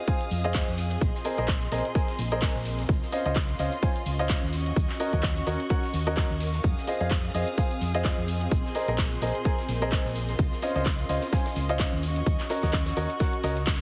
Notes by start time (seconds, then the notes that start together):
Already playing: C4 F4 G#4 D#5 F5 D#6
0.08 C4 F4 G#4 G#5, kick, closed hi-hat, shaker
0.21 closed hi-hat
0.31 F2, open hi-hat, shaker
0.44 C4 F4 G#4 D#5, closed hi-hat, shaker
0.54 C4 F4 G#4, kick, snare, clap, closed hi-hat, shaker
0.68 F2
0.78 open hi-hat, shaker
0.91 closed hi-hat, shaker
1.01 A#1 D#5 C6, kick, closed hi-hat, shaker
1.14 snare
1.25 C4 G#4 A#4 D#5, open hi-hat, shaker
1.38 A#1 C4 G#4 A#4 D#5, closed hi-hat, shaker
1.48 kick, snare, clap, closed hi-hat, shaker
1.61 closed hi-hat
1.72 A#1 C4 G#4 A#4 D#5, snare, open hi-hat, shaker
1.85 A#4, closed hi-hat, shaker
1.95 C4 G#4 A#4 G#5, kick, closed hi-hat, shaker
2.08 snare, closed hi-hat
2.19 A#1, snare, open hi-hat, shaker
2.32 C4 G#4 A#4 D#5, closed hi-hat, shaker
2.42 C4 G#4, kick, snare, clap, closed hi-hat, open hi-hat, shaker
2.55 A#1, snare
2.65 open hi-hat, shaker
2.78 snare, closed hi-hat, shaker
2.89 C#2 C#4 F4 D#5 C6, kick, closed hi-hat, shaker
3.02 snare
3.07 F4
3.11 C#4 F4 C5 D#5, open hi-hat, shaker
3.13 shaker
3.26 C#2 C#4 F4 C5 D#5, closed hi-hat, shaker
3.35 kick, snare, clap, closed hi-hat, shaker
3.49 closed hi-hat
3.59 C#2 C#4 F4 C5 D#5, open hi-hat, shaker
3.72 closed hi-hat, shaker
3.83 C#4 F4 C5 G#5, kick, closed hi-hat, shaker
3.96 closed hi-hat
4.06 C#2, open hi-hat, shaker
4.19 C#4 F4 C5 D#5, closed hi-hat, shaker
4.29 kick, snare, clap, closed hi-hat, shaker
4.43 D#2
4.53 F#4 C#6, open hi-hat, shaker
4.66 closed hi-hat, shaker
4.76 D#2, kick, closed hi-hat, shaker
4.85 F#4, snare
4.89 clap
5.00 C#4 F#4 A#4 D#5, open hi-hat, shaker
5.13 D#2 C#4 F#4 A#4 D#5, kick, closed hi-hat, shaker
5.23 kick, snare, clap, closed hi-hat, shaker
5.36 closed hi-hat
5.46 D#2 C#4 F#4 A#4 D#5, snare, open hi-hat, shaker
5.60 closed hi-hat, shaker
5.70 C#4 F#4 A#4 F#5, kick, closed hi-hat, shaker
5.83 snare, closed hi-hat
5.93 D#2, snare, open hi-hat, shaker
6.07 C#4 F#4 A#4 D#5, closed hi-hat, shaker
6.17 C#4 F#4 A#4, kick, snare, clap, closed hi-hat, open hi-hat, shaker
6.30 D#2, snare
6.40 open hi-hat, shaker
6.53 snare, open hi-hat, shaker
6.63 F2 C4 G#4 F5 D#6, kick, closed hi-hat, shaker
6.77 snare
6.87 C4 F4 G#4 D#5, open hi-hat, shaker
7.01 F2 C4 F4 G#4 D#5, closed hi-hat, shaker
7.10 F4, kick, snare, clap, closed hi-hat, shaker
7.14 G#4
7.24 closed hi-hat
7.34 F2 C4 F4 G#4 D#5, open hi-hat, shaker
7.48 closed hi-hat, shaker
7.58 C4 F4 G#4 G#5, kick, closed hi-hat, shaker
7.71 closed hi-hat
7.81 F2, open hi-hat, shaker
7.94 C4 F4 G#4 D#5, closed hi-hat, shaker
8.05 C4 F4 G#4 D#5, kick, snare, clap, closed hi-hat, shaker
8.18 F2
8.28 open hi-hat, shaker
8.41 closed hi-hat, shaker
8.51 A#1 D#5 C6, kick, closed hi-hat, shaker
8.65 snare
8.75 C4 G#4 A#4 D#5, open hi-hat, shaker
8.85 A#1 C4 G#4 A#4 D#5, closed hi-hat, shaker
8.98 kick, snare, clap, closed hi-hat, shaker
9.05 D#5
9.11 closed hi-hat
9.22 A#1 C4 G#4 A#4 D#5, snare, open hi-hat, shaker
9.35 closed hi-hat, shaker
9.45 C4 G#4 A#4 G#5, kick, closed hi-hat, shaker
9.58 snare, closed hi-hat
9.68 A#1, snare, open hi-hat, shaker
9.82 C4 G#4 A#4 D#5, closed hi-hat, shaker
9.92 C4 G#4 A#4 D#5, kick, snare, clap, closed hi-hat, open hi-hat, shaker
10.05 A#1, snare
10.15 open hi-hat, shaker
10.29 snare, closed hi-hat, shaker
10.39 C#2 C#4 F4, kick, closed hi-hat, shaker
10.52 snare
10.62 C#4 F4 C5 D#5, open hi-hat, shaker
10.67 F4
10.76 C#2 C#4 F4 C5 D#5, closed hi-hat, shaker
10.86 kick, snare, clap, closed hi-hat, shaker
10.99 closed hi-hat
11.09 C#2 C#4 F4 C5 D#5, snare, open hi-hat, shaker
11.22 snare, closed hi-hat, shaker
11.33 C#4 F4 C5 G#5, kick, snare, closed hi-hat, shaker
11.45 snare, closed hi-hat, shaker
11.55 C#2, open hi-hat, shaker
11.69 C#4 F4 C5 D#5, closed hi-hat, shaker
11.79 C#4, kick, snare, clap, closed hi-hat, shaker
11.93 D#2
12.03 F#4 C#6, open hi-hat, shaker
12.16 F#4, closed hi-hat, shaker
12.24 D#2 A#4, kick, closed hi-hat, shaker
12.40 snare, clap, closed hi-hat
12.50 C#4 F#4 A#4 D#5, snare, open hi-hat, shaker
12.63 D#2 C#4 F#4 A#4 D#5, kick, snare, closed hi-hat, shaker
12.73 kick, snare, clap, closed hi-hat, shaker
12.86 snare, closed hi-hat, shaker
12.96 D#2 C#4 F#4 A#4 D#5, open hi-hat, shaker
13.10 closed hi-hat, shaker
13.20 C#4 F#4 A#4 F#5, kick, snare, closed hi-hat, shaker
13.33 closed hi-hat
13.44 C#2 C#4 F#4 A#4 D#5, open hi-hat, shaker
13.56 snare, closed hi-hat, shaker
13.67 kick, snare, clap, closed hi-hat, open hi-hat, shaker